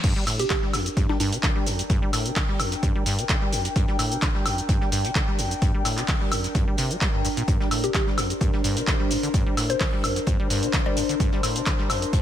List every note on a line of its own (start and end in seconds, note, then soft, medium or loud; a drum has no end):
0.04 0.14 G2 loud
0.04 12.22 D4 medium
0.04 kick loud
0.04 closed hi-hat medium
0.04 crash loud
0.04 shaker soft
0.16 0.25 G3 medium
0.16 snare soft
0.25 0.41 A2 medium
0.25 12.22 A#4 medium
0.25 7.71 G5 medium
0.25 snare soft
0.25 closed hi-hat medium
0.25 open hi-hat loud
0.25 high woodblock medium
0.25 shaker medium
0.39 0.45 C3 medium
0.39 0.46 G4 medium
0.39 closed hi-hat medium
0.39 shaker soft
0.50 0.57 D3 loud
0.50 0.58 G4 medium
0.50 kick loud
0.50 snare loud
0.50 clap loud
0.50 closed hi-hat medium
0.50 shaker soft
0.62 0.75 G3 medium
0.62 snare soft
0.73 0.88 F2 medium
0.73 snare medium
0.73 closed hi-hat medium
0.73 open hi-hat medium
0.73 high woodblock medium
0.73 shaker medium
0.86 0.90 G2 medium
0.86 closed hi-hat medium
0.86 shaker soft
0.97 1.07 G2 loud
0.97 kick loud
0.97 closed hi-hat medium
0.97 shaker soft
1.09 1.18 G3 medium
1.09 1.16 D4 medium
1.09 snare soft
1.20 1.34 G2 loud
1.20 1.28 D4 medium
1.20 closed hi-hat medium
1.20 open hi-hat loud
1.20 shaker medium
1.32 1.38 C3 medium
1.32 closed hi-hat soft
1.32 closed hi-hat medium
1.32 shaker soft
1.43 1.50 D3 loud
1.43 kick loud
1.43 snare loud
1.43 clap loud
1.43 closed hi-hat medium
1.43 shaker soft
1.56 1.68 G3 medium
1.66 1.80 F2 medium
1.66 closed hi-hat medium
1.66 open hi-hat medium
1.66 shaker medium
1.79 1.83 G2 medium
1.79 closed hi-hat medium
1.79 shaker soft
1.90 2.00 G2 loud
1.90 kick loud
1.90 closed hi-hat medium
1.90 shaker soft
2.02 2.11 G3 medium
2.13 2.27 A2 medium
2.13 snare medium
2.13 closed hi-hat medium
2.13 open hi-hat loud
2.13 high woodblock medium
2.13 shaker medium
2.26 2.31 C3 medium
2.26 closed hi-hat medium
2.26 shaker soft
2.36 2.43 D3 loud
2.36 kick loud
2.36 snare loud
2.36 clap loud
2.36 closed hi-hat medium
2.36 open hi-hat medium
2.36 shaker soft
2.49 2.61 G3 medium
2.59 2.74 F2 medium
2.59 closed hi-hat medium
2.59 open hi-hat medium
2.59 high woodblock medium
2.59 shaker medium
2.72 2.76 G2 medium
2.72 snare soft
2.72 closed hi-hat medium
2.72 shaker soft
2.83 2.93 G2 loud
2.83 kick loud
2.83 closed hi-hat medium
2.83 shaker soft
2.95 3.04 G3 medium
3.06 3.20 G2 loud
3.06 snare medium
3.06 closed hi-hat medium
3.06 open hi-hat loud
3.06 shaker medium
3.19 3.24 C3 medium
3.19 closed hi-hat medium
3.19 shaker soft
3.29 3.36 D3 loud
3.29 kick loud
3.29 snare loud
3.29 clap loud
3.29 closed hi-hat medium
3.29 shaker soft
3.42 3.54 G3 medium
3.52 3.67 F2 medium
3.52 closed hi-hat medium
3.52 open hi-hat loud
3.52 shaker medium
3.65 3.69 G2 medium
3.65 closed hi-hat soft
3.65 closed hi-hat medium
3.65 shaker soft
3.76 3.86 G2 loud
3.76 kick loud
3.76 closed hi-hat medium
3.76 shaker soft
3.88 3.97 G3 medium
3.88 snare soft
3.99 4.13 A2 medium
3.99 snare soft
3.99 closed hi-hat medium
3.99 open hi-hat loud
3.99 high woodblock medium
3.99 shaker medium
4.12 4.18 C3 medium
4.12 closed hi-hat medium
4.12 shaker soft
4.22 4.29 D3 loud
4.22 kick loud
4.22 snare loud
4.22 clap loud
4.22 closed hi-hat medium
4.22 shaker soft
4.35 4.47 G3 medium
4.35 snare soft
4.46 4.60 F2 medium
4.46 snare medium
4.46 closed hi-hat medium
4.46 open hi-hat loud
4.46 high woodblock medium
4.46 shaker medium
4.58 4.62 G2 medium
4.58 closed hi-hat medium
4.58 shaker soft
4.69 4.79 G2 loud
4.69 kick loud
4.69 closed hi-hat medium
4.69 shaker soft
4.81 4.90 G3 medium
4.81 snare soft
4.92 5.06 G2 loud
4.92 closed hi-hat medium
4.92 open hi-hat loud
4.92 shaker medium
5.05 5.11 C3 medium
5.05 closed hi-hat medium
5.05 closed hi-hat soft
5.05 shaker soft
5.15 5.22 D3 loud
5.15 kick loud
5.15 snare loud
5.15 clap loud
5.15 closed hi-hat medium
5.15 shaker soft
5.28 5.40 G3 medium
5.39 5.53 F2 medium
5.39 closed hi-hat medium
5.39 open hi-hat loud
5.39 shaker medium
5.51 5.55 G2 medium
5.51 closed hi-hat medium
5.51 shaker soft
5.62 5.72 G2 loud
5.62 kick loud
5.62 closed hi-hat medium
5.62 shaker soft
5.74 5.83 G3 medium
5.85 5.99 A2 medium
5.85 snare medium
5.85 closed hi-hat medium
5.85 open hi-hat loud
5.85 high woodblock medium
5.85 shaker medium
5.98 6.04 C3 medium
5.98 clap soft
5.98 closed hi-hat medium
5.98 shaker soft
6.08 6.15 D3 loud
6.08 kick loud
6.08 snare loud
6.08 clap loud
6.08 closed hi-hat medium
6.08 open hi-hat medium
6.08 shaker soft
6.21 6.33 G3 medium
6.31 6.46 F2 medium
6.31 closed hi-hat medium
6.31 open hi-hat loud
6.31 high woodblock medium
6.31 shaker medium
6.44 6.48 G2 medium
6.44 snare soft
6.44 closed hi-hat medium
6.44 shaker soft
6.55 6.65 G2 loud
6.55 kick loud
6.55 closed hi-hat medium
6.55 closed hi-hat soft
6.55 shaker soft
6.67 6.76 G3 medium
6.77 6.92 C3 loud
6.77 snare medium
6.77 closed hi-hat medium
6.77 open hi-hat loud
6.77 shaker medium
6.91 6.97 G3 loud
6.91 closed hi-hat medium
6.91 shaker soft
7.01 7.08 G3 loud
7.01 kick loud
7.01 snare loud
7.01 clap loud
7.01 closed hi-hat medium
7.01 shaker soft
7.14 7.23 G2 medium
7.25 7.29 G2 medium
7.25 open hi-hat loud
7.25 shaker medium
7.37 7.43 A#2 loud
7.37 closed hi-hat medium
7.37 shaker soft
7.48 7.58 G2 loud
7.48 kick loud
7.48 closed hi-hat medium
7.48 shaker soft
7.60 7.69 G3 medium
7.60 snare soft
7.69 7.85 A2 medium
7.69 12.22 C5 medium
7.69 snare soft
7.69 closed hi-hat medium
7.69 open hi-hat loud
7.69 high woodblock medium
7.69 shaker medium
7.84 7.90 C3 medium
7.84 7.91 G4 medium
7.84 closed hi-hat medium
7.84 shaker soft
7.94 8.01 D3 loud
7.94 8.03 G4 medium
7.94 kick loud
7.94 snare loud
7.94 clap loud
7.94 closed hi-hat medium
7.94 shaker soft
8.07 8.19 G3 medium
8.07 snare soft
8.18 8.32 F2 medium
8.18 snare medium
8.18 closed hi-hat medium
8.18 open hi-hat loud
8.18 high woodblock medium
8.18 shaker medium
8.30 8.34 G2 medium
8.30 closed hi-hat medium
8.30 shaker soft
8.41 8.51 G2 loud
8.41 kick loud
8.41 closed hi-hat medium
8.41 shaker soft
8.53 8.62 G3 medium
8.53 snare soft
8.64 8.78 G2 loud
8.64 closed hi-hat medium
8.64 open hi-hat loud
8.64 shaker medium
8.77 8.83 C3 medium
8.77 closed hi-hat medium
8.77 closed hi-hat soft
8.77 shaker soft
8.87 8.94 D3 loud
8.87 kick loud
8.87 snare loud
8.87 clap loud
8.87 closed hi-hat loud
8.87 closed hi-hat medium
8.87 shaker soft
9.00 9.12 G3 medium
9.10 9.18 F2 medium
9.10 closed hi-hat medium
9.10 open hi-hat loud
9.10 shaker medium
9.23 9.29 D3 medium
9.23 closed hi-hat medium
9.23 shaker soft
9.34 9.44 G2 loud
9.34 kick loud
9.34 closed hi-hat medium
9.34 shaker soft
9.46 9.55 G3 medium
9.57 9.71 A2 medium
9.57 snare medium
9.57 closed hi-hat medium
9.57 open hi-hat loud
9.57 high woodblock medium
9.57 shaker medium
9.70 9.76 C3 medium
9.70 9.77 C5 medium
9.70 closed hi-hat medium
9.70 shaker soft
9.80 9.87 D3 loud
9.80 9.89 C5 medium
9.80 kick loud
9.80 snare loud
9.80 clap loud
9.80 closed hi-hat medium
9.80 open hi-hat medium
9.80 shaker soft
9.93 10.05 G3 medium
10.04 10.18 F2 medium
10.04 closed hi-hat medium
10.04 open hi-hat medium
10.04 high woodblock medium
10.04 shaker medium
10.16 10.20 G2 medium
10.16 snare soft
10.16 closed hi-hat medium
10.16 shaker soft
10.27 10.37 G2 loud
10.27 kick loud
10.27 closed hi-hat medium
10.27 shaker soft
10.39 10.48 G3 medium
10.50 10.64 G2 loud
10.50 snare medium
10.50 closed hi-hat medium
10.50 open hi-hat loud
10.50 shaker medium
10.63 10.69 C3 medium
10.63 closed hi-hat medium
10.63 shaker soft
10.73 10.80 D3 loud
10.73 kick loud
10.73 snare loud
10.73 clap loud
10.73 closed hi-hat medium
10.73 shaker soft
10.86 10.98 G3 medium
10.86 11.51 D5 loud
10.96 11.04 F2 medium
10.96 closed hi-hat medium
10.96 open hi-hat medium
10.96 shaker medium
11.09 11.15 D3 medium
11.09 closed hi-hat medium
11.09 closed hi-hat soft
11.09 shaker soft
11.20 11.30 G2 loud
11.20 kick loud
11.20 closed hi-hat medium
11.20 shaker soft
11.32 11.41 G3 medium
11.32 snare soft
11.43 11.57 A2 medium
11.43 snare soft
11.43 closed hi-hat medium
11.43 open hi-hat loud
11.43 high woodblock medium
11.43 shaker medium
11.56 11.62 C3 medium
11.56 closed hi-hat medium
11.56 shaker soft
11.66 11.73 D3 loud
11.66 kick loud
11.66 snare loud
11.66 clap loud
11.66 closed hi-hat medium
11.66 shaker soft
11.79 11.91 G3 medium
11.79 snare soft
11.90 12.04 F2 medium
11.90 snare medium
11.90 closed hi-hat medium
11.90 open hi-hat medium
11.90 high woodblock medium
11.90 shaker medium
12.02 12.06 G2 medium
12.02 closed hi-hat medium
12.02 shaker soft
12.13 12.22 G2 loud
12.13 kick loud
12.13 closed hi-hat medium
12.13 closed hi-hat loud
12.13 shaker soft